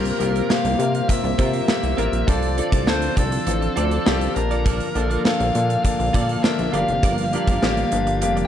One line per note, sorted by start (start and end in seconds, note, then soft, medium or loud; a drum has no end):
0.00 0.13 C2 loud
0.00 2.26 C3 medium
0.00 8.47 F3 medium
0.00 2.26 G3 medium
0.00 0.12 A#3 medium
0.00 2.26 A#3 medium
0.00 0.12 C4 medium
0.00 0.12 F4 medium
0.00 6.70 F4 medium
0.00 0.12 G4 medium
0.00 0.12 A#4 medium
0.00 0.53 A#4 medium
0.05 closed hi-hat medium
0.19 0.42 C2 loud
0.19 0.41 A#3 medium
0.19 0.41 C4 medium
0.19 0.35 C4 soft
0.19 0.41 F4 medium
0.19 0.34 F4 medium
0.19 0.42 G4 medium
0.19 0.33 A#4 medium
0.19 closed hi-hat medium
0.35 0.49 C4 soft
0.35 0.49 F4 soft
0.35 0.49 A#4 medium
0.35 closed hi-hat soft
0.49 0.71 A#3 medium
0.49 0.71 C4 medium
0.49 0.71 F4 medium
0.49 0.72 G4 medium
0.49 1.09 F5 medium
0.49 snare medium
0.65 0.76 C2 medium
0.65 muted clean electric guitar stroke soft
0.65 closed hi-hat soft
0.78 1.01 C3 medium
0.78 1.00 A#3 medium
0.78 1.01 C4 medium
0.78 1.01 F4 medium
0.78 1.01 A#4 medium
0.78 closed hi-hat medium
0.94 muted clean electric guitar stroke soft
0.94 closed hi-hat medium
1.09 1.31 A#3 medium
1.09 1.31 C4 medium
1.09 1.31 F4 medium
1.09 1.31 G4 medium
1.09 2.28 E5 loud
1.09 muted clean electric guitar stroke soft
1.09 kick medium
1.09 closed hi-hat medium
1.24 1.35 C2 loud
1.24 muted clean electric guitar stroke soft
1.24 closed hi-hat soft
1.38 1.61 C3 medium
1.38 1.60 A#3 medium
1.38 1.54 C4 medium
1.38 1.60 C4 medium
1.38 1.53 F4 medium
1.38 1.61 F4 medium
1.38 1.61 G4 medium
1.38 1.52 A#4 medium
1.38 kick medium
1.38 closed hi-hat medium
1.53 1.71 C4 soft
1.53 1.71 F4 medium
1.53 1.71 A#4 medium
1.53 closed hi-hat soft
1.68 1.90 A#3 medium
1.68 1.90 C4 medium
1.68 1.90 F4 medium
1.68 1.90 G4 medium
1.68 snare loud
1.83 1.94 C2 medium
1.83 muted clean electric guitar stroke soft
1.83 closed hi-hat medium
1.97 2.09 A1 medium
1.97 2.19 A#3 medium
1.97 2.19 C4 medium
1.97 2.12 F4 medium
1.97 2.20 F4 medium
1.97 2.20 A#4 medium
1.97 2.11 A#4 medium
1.97 closed hi-hat medium
2.13 2.24 A#1 medium
2.13 muted clean electric guitar stroke soft
2.13 closed hi-hat soft
2.27 2.61 C2 loud
2.27 4.34 D3 medium
2.27 4.34 C4 medium
2.27 2.49 C4 medium
2.27 2.49 D4 medium
2.27 2.49 F4 medium
2.27 2.50 F4 medium
2.27 2.50 A4 medium
2.27 2.50 A4 loud
2.27 2.89 D5 medium
2.27 2.50 D5 loud
2.27 kick loud
2.27 closed hi-hat medium
2.42 closed hi-hat medium
2.57 2.79 C4 medium
2.57 2.79 D4 medium
2.57 2.73 F4 medium
2.57 2.79 F4 medium
2.57 2.72 A4 medium
2.57 2.79 A4 medium
2.57 2.71 D5 medium
2.57 closed hi-hat medium
2.72 2.89 C2 medium
2.72 2.86 F4 medium
2.72 2.86 A4 medium
2.72 2.87 D5 medium
2.72 kick medium
2.72 closed hi-hat soft
2.87 3.10 D2 medium
2.87 3.09 C4 medium
2.87 3.09 D4 medium
2.87 3.09 F4 medium
2.87 3.09 A4 medium
2.87 3.17 C5 medium
2.87 muted clean electric guitar stroke soft
2.87 snare loud
3.02 muted clean electric guitar stroke soft
3.02 closed hi-hat medium
3.17 3.39 C2 medium
3.17 3.38 C4 medium
3.17 3.39 D4 medium
3.17 3.39 F4 medium
3.17 4.35 A4 medium
3.17 3.39 A4 medium
3.17 kick medium
3.17 closed hi-hat medium
3.32 muted clean electric guitar stroke soft
3.32 closed hi-hat medium
3.46 3.69 A1 medium
3.46 3.68 C4 medium
3.46 3.68 D4 medium
3.46 3.68 F4 medium
3.46 3.69 A4 medium
3.46 muted clean electric guitar stroke soft
3.46 closed hi-hat medium
3.61 muted clean electric guitar stroke soft
3.61 closed hi-hat soft
3.76 3.99 D2 medium
3.76 3.98 C4 medium
3.76 3.98 D4 medium
3.76 3.91 F4 medium
3.76 3.98 F4 medium
3.76 3.91 A4 medium
3.76 3.98 A4 medium
3.76 3.90 D5 medium
3.76 closed hi-hat medium
3.91 4.05 F4 soft
3.91 4.06 A4 medium
3.91 4.06 D5 medium
3.91 closed hi-hat soft
4.05 4.29 C2 medium
4.05 4.27 C4 loud
4.05 4.27 D4 loud
4.05 4.28 F4 loud
4.05 4.28 F4 medium
4.05 4.28 G4 loud
4.05 4.21 A4 medium
4.05 4.20 D5 loud
4.05 snare loud
4.21 muted clean electric guitar stroke soft
4.21 closed hi-hat medium
4.35 4.81 A#1 medium
4.35 8.47 D3 medium
4.35 4.83 A#3 medium
4.35 8.47 A#3 medium
4.35 4.83 D4 medium
4.35 4.84 F4 medium
4.35 5.21 A#4 medium
4.35 4.84 A5 medium
4.35 muted clean electric guitar stroke soft
4.35 closed hi-hat medium
4.51 4.64 F4 medium
4.51 4.65 A4 medium
4.51 4.66 D5 medium
4.51 closed hi-hat soft
4.65 4.87 F4 medium
4.65 4.87 A4 medium
4.65 4.88 D5 medium
4.65 kick loud
4.65 closed hi-hat medium
4.80 closed hi-hat medium
4.95 5.18 A#1 loud
4.95 5.17 A#3 medium
4.95 5.17 D4 medium
4.95 5.10 F4 medium
4.95 5.17 F4 medium
4.95 5.10 A4 medium
4.95 5.17 A4 medium
4.95 5.09 D5 medium
4.95 closed hi-hat medium
5.10 5.24 F4 medium
5.10 5.24 A4 medium
5.10 5.25 D5 medium
5.10 closed hi-hat medium
5.25 5.47 A#3 medium
5.25 5.47 D4 medium
5.25 5.47 F4 medium
5.25 5.47 A4 loud
5.25 5.82 F5 medium
5.25 muted clean electric guitar stroke soft
5.25 snare loud
5.40 5.51 A#1 medium
5.40 muted clean electric guitar stroke soft
5.40 closed hi-hat medium
5.55 5.77 A#2 medium
5.55 5.76 A#3 medium
5.55 5.76 D4 medium
5.55 5.77 F4 medium
5.55 5.77 A4 medium
5.55 closed hi-hat medium
5.69 muted clean electric guitar stroke soft
5.69 closed hi-hat medium
5.84 6.06 A#3 medium
5.84 6.06 D4 medium
5.84 6.06 F4 medium
5.84 6.06 A4 medium
5.84 6.43 F5 medium
5.84 muted clean electric guitar stroke soft
5.84 kick medium
5.84 closed hi-hat medium
5.99 6.11 A#1 loud
5.99 muted clean electric guitar stroke soft
5.99 closed hi-hat soft
6.13 6.37 A#2 medium
6.13 6.36 A#3 medium
6.13 6.36 D4 medium
6.13 6.28 F4 medium
6.13 6.36 F4 medium
6.13 6.28 A4 medium
6.13 6.37 A4 medium
6.13 6.27 D5 loud
6.13 kick medium
6.13 closed hi-hat medium
6.28 6.46 F4 soft
6.28 6.46 A4 medium
6.28 6.46 D5 medium
6.28 closed hi-hat soft
6.43 6.65 A#3 medium
6.43 6.65 D4 medium
6.43 6.65 F4 medium
6.43 6.66 A#4 medium
6.43 6.73 E5 medium
6.43 snare loud
6.58 6.70 A#1 medium
6.58 muted clean electric guitar stroke soft
6.58 closed hi-hat soft
6.73 6.85 G1 medium
6.73 8.47 G3 medium
6.73 7.21 A#3 medium
6.73 7.21 D4 medium
6.73 6.95 F4 medium
6.73 7.21 F4 medium
6.73 8.47 F4 medium
6.73 7.22 G4 medium
6.73 6.88 A#4 medium
6.73 6.87 D5 medium
6.73 8.41 F5 medium
6.73 closed hi-hat medium
6.88 7.00 F1 medium
6.88 muted clean electric guitar stroke soft
6.88 closed hi-hat soft
7.03 7.37 G1 loud
7.03 7.25 F4 medium
7.03 7.25 A#4 medium
7.03 7.26 D5 loud
7.03 kick loud
7.03 closed hi-hat medium
7.18 closed hi-hat medium
7.33 7.54 A#3 medium
7.33 7.54 D4 medium
7.33 7.48 F4 medium
7.33 7.55 F4 medium
7.33 7.55 G4 medium
7.33 7.48 A#4 medium
7.33 7.47 D5 medium
7.33 closed hi-hat medium
7.47 7.59 G1 medium
7.47 7.62 F4 soft
7.47 7.62 A#4 medium
7.47 7.62 D5 medium
7.47 kick medium
7.47 closed hi-hat soft
7.62 7.85 A1 medium
7.62 7.84 A#3 loud
7.62 7.84 D4 medium
7.62 7.84 F4 medium
7.62 7.84 G4 loud
7.62 snare medium
7.77 muted clean electric guitar stroke soft
7.77 closed hi-hat medium
7.91 8.23 G1 medium
7.91 8.13 A#3 medium
7.91 8.13 D4 medium
7.91 8.14 F4 medium
7.91 8.14 G4 medium
7.91 closed hi-hat medium
8.07 muted clean electric guitar stroke soft
8.07 closed hi-hat medium
8.21 8.44 F1 medium
8.21 8.43 A#3 medium
8.21 8.43 D4 medium
8.21 8.44 F4 medium
8.21 8.44 G4 medium
8.21 muted clean electric guitar stroke soft
8.21 closed hi-hat medium
8.37 muted clean electric guitar stroke medium
8.37 closed hi-hat soft